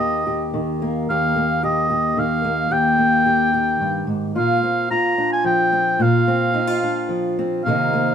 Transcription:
Already playing: steel-string acoustic guitar D#2 D#3 A#3 G4, oboe D#5
0.27 steel-string acoustic guitar G4
0.54 steel-string acoustic guitar D#3
0.82 steel-string acoustic guitar A#3
1.10 steel-string acoustic guitar D#2 G4, oboe F5
1.36 steel-string acoustic guitar A#3
1.63 steel-string acoustic guitar G4, oboe D#5
1.90 steel-string acoustic guitar G4
2.17 steel-string acoustic guitar D#3, oboe F5
2.44 steel-string acoustic guitar A#3
2.70 steel-string acoustic guitar D#2 G4, oboe G5
2.98 steel-string acoustic guitar A#3
3.26 steel-string acoustic guitar G4
3.54 steel-string acoustic guitar G4
3.80 steel-string acoustic guitar G2
4.07 steel-string acoustic guitar G#2
4.35 steel-string acoustic guitar A#2 F4, oboe F5
4.63 steel-string acoustic guitar C4
4.91 steel-string acoustic guitar F4, oboe A#5
5.18 steel-string acoustic guitar D4
5.33 oboe G#5
5.44 steel-string acoustic guitar F3, oboe G5
5.73 steel-string acoustic guitar C4
5.99 steel-string acoustic guitar A#2 F4, oboe F5
6.28 steel-string acoustic guitar C4
6.54 steel-string acoustic guitar D#4
6.67 steel-string acoustic guitar F4
6.83 steel-string acoustic guitar D4
7.09 steel-string acoustic guitar F3
7.39 steel-string acoustic guitar C4
7.65 steel-string acoustic guitar C3 D#3 A#3, oboe F5
7.69 steel-string acoustic guitar C4 D#4
7.93 steel-string acoustic guitar A#3

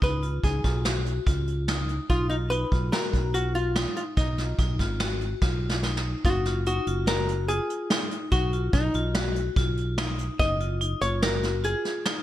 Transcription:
0.02 fingered electric bass C#2, vibraphone D#4, hollow-body jazz guitar B4, kick, closed hi-hat
0.23 vibraphone F4, closed hi-hat
0.43 fingered electric bass C#2, vibraphone D#4, hollow-body jazz guitar G#4, kick, closed hi-hat
0.64 fingered electric bass B1, vibraphone F4, kick, snare, closed hi-hat
0.85 vibraphone F#4, snare, closed hi-hat
1.06 closed hi-hat
1.27 fingered electric bass C#2, vibraphone F4, kick, closed hi-hat
1.47 closed hi-hat
1.68 vibraphone D#4, snare, closed hi-hat
1.89 closed hi-hat
2.10 fingered electric bass B1, vibraphone D#4, hollow-body jazz guitar F4, kick, closed hi-hat
2.30 hollow-body jazz guitar D#4, vibraphone F4, closed hi-hat
2.50 vibraphone D#4, hollow-body jazz guitar B4, closed hi-hat
2.72 fingered electric bass B1, vibraphone F4, kick, closed hi-hat
2.92 vibraphone F#4, hollow-body jazz guitar A#4, snare, closed hi-hat
3.13 fingered electric bass B1, kick, closed hi-hat
3.34 vibraphone F4, hollow-body jazz guitar F#4, closed hi-hat
3.55 hollow-body jazz guitar F4, closed hi-hat
3.76 vibraphone D#4, snare, closed hi-hat
3.96 hollow-body jazz guitar F4, closed hi-hat
4.17 fingered electric bass B1, vibraphone D#4, hollow-body jazz guitar D#4, kick, closed hi-hat
4.38 vibraphone F4, snare, closed hi-hat
4.59 fingered electric bass B1, vibraphone D#4, kick, snare, closed hi-hat
4.79 fingered electric bass G#1, vibraphone F4, kick, snare, closed hi-hat
5.00 vibraphone F#4, snare, closed hi-hat
5.21 closed hi-hat
5.42 fingered electric bass B1, vibraphone F4, kick, snare
5.69 snare
5.83 vibraphone D#4, snare
5.97 snare
6.24 fingered electric bass F#1, vibraphone D#4, hollow-body jazz guitar F#4, kick, closed hi-hat
6.45 vibraphone F4, snare, closed hi-hat
6.66 vibraphone D#4, hollow-body jazz guitar F#4, closed hi-hat
6.87 fingered electric bass F#1, vibraphone F4, closed hi-hat
7.07 vibraphone F#4, hollow-body jazz guitar A#4, snare, closed hi-hat
7.28 closed hi-hat
7.48 vibraphone F4, hollow-body jazz guitar G#4, closed hi-hat
7.70 closed hi-hat
7.90 vibraphone D#4, snare, closed hi-hat
8.11 closed hi-hat
8.32 fingered electric bass B1, vibraphone D#4, hollow-body jazz guitar F#4, kick, closed hi-hat
8.53 vibraphone F4, closed hi-hat
8.73 fingered electric bass B1, hollow-body jazz guitar D#4, vibraphone D#4, kick, closed hi-hat
8.94 fingered electric bass B1, vibraphone F4, closed hi-hat
9.15 vibraphone F#4, snare, closed hi-hat
9.36 closed hi-hat
9.56 fingered electric bass B1, vibraphone F4, kick, closed hi-hat
9.77 closed hi-hat
9.98 vibraphone D#4, snare, closed hi-hat
10.19 closed hi-hat
10.39 fingered electric bass F#1, vibraphone D#4, hollow-body jazz guitar D#5, kick, closed hi-hat
10.60 vibraphone F4, closed hi-hat
10.81 vibraphone D#4, closed hi-hat
11.01 fingered electric bass F#1, vibraphone F4, hollow-body jazz guitar C#5, closed hi-hat
11.22 vibraphone F#4, hollow-body jazz guitar A#4, snare, closed hi-hat
11.43 snare, closed hi-hat
11.64 vibraphone F4, hollow-body jazz guitar G#4, closed hi-hat
11.85 snare, closed hi-hat
12.06 vibraphone D#4, snare, closed hi-hat

